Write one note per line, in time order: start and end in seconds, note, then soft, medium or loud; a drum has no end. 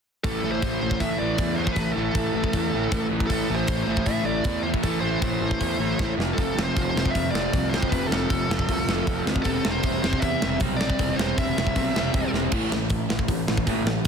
0.24 0.37 A1 medium
0.24 0.43 A2 medium
0.24 0.44 E3 medium
0.24 0.44 A3 medium
0.24 0.51 A4 medium
0.24 kick loud
0.24 open hi-hat medium
0.43 0.57 A1 medium
0.43 0.62 A2 medium
0.43 0.63 E3 medium
0.43 0.63 A3 medium
0.52 0.79 C5 medium
0.62 0.76 A1 medium
0.62 0.82 A2 medium
0.62 0.83 E3 medium
0.62 0.83 A3 medium
0.62 kick loud
0.62 open hi-hat medium
0.81 0.95 A1 medium
0.81 1.01 A2 medium
0.81 1.02 E3 medium
0.81 1.02 A3 medium
0.81 1.01 C5 medium
0.91 kick medium
1.00 1.14 A2 medium
1.00 1.19 A2 medium
1.00 1.20 E3 medium
1.00 1.21 A3 medium
1.00 1.18 E5 medium
1.00 kick medium
1.00 open hi-hat medium
1.19 1.33 A1 medium
1.19 1.41 A2 medium
1.19 1.41 E3 medium
1.19 1.42 A3 loud
1.19 1.59 D5 medium
1.38 1.65 E2 medium
1.38 1.60 A2 medium
1.38 1.61 E3 medium
1.38 kick loud
1.38 open hi-hat medium
1.43 1.61 A3 medium
1.55 1.72 C5 medium
1.60 1.77 A2 medium
1.60 1.79 E3 medium
1.60 1.79 A3 medium
1.67 kick medium
1.72 1.90 A1 medium
1.72 1.92 B4 medium
1.72 kick medium
1.72 open hi-hat soft
1.78 1.97 A2 medium
1.78 1.98 E3 medium
1.78 1.98 A3 medium
1.92 2.09 A1 medium
1.92 3.06 A4 medium
1.98 2.16 A2 medium
1.98 2.17 E3 medium
1.98 2.18 A3 medium
2.15 2.28 A1 medium
2.15 2.33 A2 medium
2.15 2.34 E3 medium
2.15 2.35 A3 medium
2.15 kick loud
2.15 open hi-hat soft
2.34 2.47 A1 medium
2.34 2.54 A2 loud
2.34 2.54 E3 medium
2.34 2.55 A3 medium
2.44 kick medium
2.53 2.67 E2 medium
2.53 2.71 A2 medium
2.53 2.72 E3 medium
2.53 2.73 A3 medium
2.53 kick medium
2.53 open hi-hat medium
2.72 2.86 A1 medium
2.72 2.91 A2 loud
2.72 2.91 E3 medium
2.72 2.92 A3 loud
2.91 3.05 A1 medium
2.91 3.09 A2 medium
2.91 3.10 E3 medium
2.91 3.11 A3 medium
2.91 kick loud
2.91 open hi-hat soft
3.10 3.25 A1 medium
3.10 3.30 A2 medium
3.10 3.31 E3 medium
3.10 3.31 A3 medium
3.20 kick medium
3.27 3.44 A1 medium
3.27 3.48 A2 medium
3.27 3.55 A4 medium
3.27 kick medium
3.27 open hi-hat soft
3.31 3.48 E3 loud
3.31 3.49 A3 loud
3.48 3.63 A1 medium
3.48 3.68 A2 medium
3.48 3.69 E3 medium
3.48 3.70 A3 medium
3.56 3.82 C5 medium
3.67 3.82 A1 medium
3.67 3.88 A2 medium
3.67 3.88 E3 medium
3.67 3.89 A3 medium
3.67 kick loud
3.67 open hi-hat medium
3.83 4.06 C5 medium
3.88 4.01 A1 medium
3.88 4.06 A2 medium
3.88 4.07 E3 loud
3.88 4.08 A3 loud
3.97 kick medium
4.04 4.20 A2 medium
4.04 4.26 A2 medium
4.04 4.26 E3 medium
4.04 4.25 E5 medium
4.04 kick loud
4.04 open hi-hat medium
4.08 4.28 A3 medium
4.26 4.39 A1 medium
4.26 4.45 A2 loud
4.26 4.45 E3 medium
4.26 4.46 A3 medium
4.26 4.62 D5 medium
4.44 4.71 E2 medium
4.44 4.64 A2 medium
4.44 4.64 E3 medium
4.44 4.66 A3 medium
4.44 kick loud
4.44 open hi-hat soft
4.63 4.83 A2 medium
4.63 4.84 E3 medium
4.63 4.68 C5 medium
4.67 4.86 A3 medium
4.74 kick medium
4.83 4.97 A1 medium
4.83 5.02 A2 medium
4.83 5.03 E3 medium
4.83 5.04 A3 loud
4.83 5.00 A4 medium
4.83 kick medium
4.83 open hi-hat medium
5.00 5.16 A1 medium
5.00 5.21 A2 medium
5.00 5.22 E3 medium
5.00 5.23 A3 medium
5.00 6.13 C5 medium
5.22 5.35 A1 medium
5.22 5.41 A2 medium
5.22 5.42 E3 medium
5.22 5.43 A3 medium
5.22 kick loud
5.22 open hi-hat medium
5.41 5.54 A1 medium
5.41 5.60 A2 medium
5.41 5.61 E3 loud
5.41 5.62 A3 medium
5.51 kick medium
5.61 5.74 E2 medium
5.61 5.79 A2 medium
5.61 5.80 E3 medium
5.61 5.80 A3 medium
5.61 kick medium
5.61 open hi-hat soft
5.78 5.92 A1 medium
5.78 5.99 A2 medium
5.78 5.99 E3 medium
5.78 6.01 A3 medium
5.99 6.13 A1 medium
5.99 6.18 A2 medium
5.99 6.18 E3 medium
5.99 9.45 A3 medium
5.99 kick loud
5.99 snare medium
6.17 6.31 F1 medium
6.17 6.37 F2 medium
6.17 6.37 C3 medium
6.17 6.38 F3 medium
6.17 snare medium
6.33 6.63 A4 medium
6.38 6.51 F1 medium
6.38 6.57 F2 medium
6.38 6.58 C3 medium
6.38 6.59 F3 medium
6.38 kick loud
6.38 open hi-hat soft
6.55 6.69 F1 medium
6.55 6.77 F2 medium
6.55 6.76 C3 medium
6.55 6.77 F3 medium
6.55 snare loud
6.63 6.89 C5 medium
6.76 6.90 F1 medium
6.76 6.94 F2 medium
6.76 6.95 C3 medium
6.76 6.95 F3 medium
6.76 kick loud
6.76 open hi-hat medium
6.90 7.08 F1 medium
6.90 7.11 C5 medium
6.95 7.13 F2 medium
6.95 7.14 C3 loud
6.95 7.14 F3 loud
6.95 snare loud
7.05 kick medium
7.10 7.32 F2 medium
7.10 7.31 E5 loud
7.15 7.28 F2 medium
7.15 7.32 C3 medium
7.15 7.33 F3 medium
7.15 kick medium
7.15 open hi-hat medium
7.31 7.47 F1 medium
7.31 7.53 F2 medium
7.31 7.53 C3 medium
7.31 7.54 F3 medium
7.31 7.72 D5 medium
7.35 snare loud
7.53 7.80 C2 medium
7.53 7.72 F2 medium
7.53 7.73 C3 medium
7.53 7.73 F3 medium
7.53 kick loud
7.53 open hi-hat medium
7.69 7.89 C5 medium
7.73 7.89 F2 medium
7.73 7.91 C3 medium
7.73 7.91 F3 medium
7.73 snare medium
7.82 kick medium
7.89 8.05 F1 medium
7.89 8.10 F2 medium
7.89 8.11 C3 loud
7.89 8.11 F3 medium
7.89 8.07 B4 medium
7.89 kick medium
7.89 open hi-hat medium
8.07 9.24 A4 medium
8.11 8.24 F1 medium
8.11 8.28 F2 medium
8.11 8.29 C3 medium
8.11 8.29 F3 medium
8.11 snare loud
8.29 8.44 F1 medium
8.29 8.47 F2 medium
8.29 8.47 C3 medium
8.29 8.49 F3 medium
8.29 kick medium
8.29 open hi-hat soft
8.48 8.63 F1 medium
8.48 8.66 F2 medium
8.48 8.67 C3 medium
8.48 8.68 F3 loud
8.48 snare loud
8.59 kick medium
8.67 8.82 C2 medium
8.67 8.86 F2 medium
8.67 8.86 C3 medium
8.67 8.86 F3 medium
8.67 kick medium
8.67 open hi-hat medium
8.87 9.01 F1 medium
8.87 9.05 F2 medium
8.87 9.06 C3 loud
8.87 9.06 F3 loud
8.87 snare loud
9.06 9.20 F1 medium
9.06 9.24 F2 medium
9.06 9.25 C3 medium
9.06 9.26 F3 medium
9.06 kick loud
9.06 open hi-hat medium
9.26 9.39 D2 medium
9.26 9.44 F2 medium
9.26 9.43 C3 medium
9.26 9.44 F3 medium
9.26 snare loud
9.36 kick medium
9.43 9.59 E1 medium
9.43 9.63 C3 medium
9.43 9.64 G3 medium
9.43 9.65 C4 medium
9.43 9.71 A4 medium
9.43 kick medium
9.43 open hi-hat soft
9.64 9.78 E1 medium
9.64 9.82 C3 medium
9.64 9.84 G3 medium
9.64 9.85 C4 medium
9.64 snare loud
9.71 10.00 C5 medium
9.83 9.97 E1 medium
9.83 10.02 C3 medium
9.83 10.03 G3 loud
9.83 10.04 C4 medium
9.83 kick loud
9.83 open hi-hat medium
10.02 10.17 E1 medium
10.02 10.20 C3 medium
10.02 10.21 G3 medium
10.02 10.22 C4 loud
10.02 10.22 C5 medium
10.02 snare loud
10.13 kick medium
10.20 10.35 E2 medium
10.20 10.41 C3 medium
10.20 10.41 G3 medium
10.20 10.43 C4 medium
10.20 10.57 E5 medium
10.20 kick medium
10.20 open hi-hat medium
10.42 10.56 E1 medium
10.42 10.60 C3 loud
10.42 10.60 G3 medium
10.42 10.62 C4 medium
10.42 snare loud
10.60 10.87 B1 medium
10.60 10.78 C3 medium
10.60 10.78 G3 medium
10.60 10.80 C4 medium
10.60 kick loud
10.60 open hi-hat medium
10.77 10.97 C3 medium
10.77 10.98 G3 medium
10.77 11.18 D5 medium
10.77 snare loud
10.81 10.98 C4 medium
10.90 kick medium
10.98 11.12 E1 medium
10.98 11.17 C3 medium
10.98 11.18 G3 loud
10.98 11.19 C4 loud
10.98 kick medium
10.98 open hi-hat medium
11.16 11.32 E1 medium
11.16 11.37 C3 medium
11.16 11.37 G3 medium
11.16 11.35 C5 medium
11.16 snare loud
11.20 11.38 C4 medium
11.37 11.51 E1 medium
11.37 11.56 C3 medium
11.37 11.56 G3 medium
11.37 11.57 C4 medium
11.37 12.30 E5 medium
11.37 kick loud
11.37 open hi-hat medium
11.57 11.71 E1 medium
11.57 11.76 C3 medium
11.57 11.77 G3 medium
11.57 11.77 C4 medium
11.57 snare loud
11.67 kick medium
11.76 11.89 B1 loud
11.76 11.95 C3 medium
11.76 11.96 G3 medium
11.76 11.96 C4 medium
11.76 kick medium
11.76 open hi-hat medium
11.96 12.09 E1 medium
11.96 12.13 C3 medium
11.96 12.14 G3 medium
11.96 12.15 C4 loud
11.96 snare loud
12.14 12.27 E1 medium
12.14 12.32 C3 medium
12.14 12.32 G3 medium
12.14 12.33 C4 medium
12.14 kick loud
12.14 open hi-hat soft
12.33 12.47 E1 medium
12.33 12.52 C3 medium
12.33 12.52 G3 medium
12.33 12.52 C4 medium
12.33 snare medium
12.52 12.65 A1 medium
12.52 12.71 A2 medium
12.52 12.71 E3 medium
12.52 12.71 A3 medium
12.52 kick loud
12.52 crash loud
12.72 12.85 A1 medium
12.72 12.89 A2 medium
12.72 12.90 E3 medium
12.72 snare loud
12.90 13.03 A1 medium
12.90 13.09 A2 medium
12.90 13.09 E3 medium
12.90 kick loud
12.90 open hi-hat medium
13.10 13.24 A1 medium
13.10 13.28 A2 medium
13.10 13.28 E3 medium
13.10 snare loud
13.19 kick medium
13.28 13.41 A1 medium
13.28 13.47 A2 medium
13.28 13.48 E3 medium
13.28 kick loud
13.28 open hi-hat medium
13.47 13.61 A1 medium
13.47 13.67 A2 medium
13.47 13.67 E3 medium
13.47 snare loud
13.57 kick medium
13.67 13.80 A1 medium
13.67 13.86 A2 medium
13.67 13.86 E3 medium
13.67 13.87 A3 medium
13.67 kick medium
13.67 open hi-hat medium
13.84 13.98 A1 medium
13.84 14.05 A2 medium
13.84 14.05 E3 medium
13.84 snare loud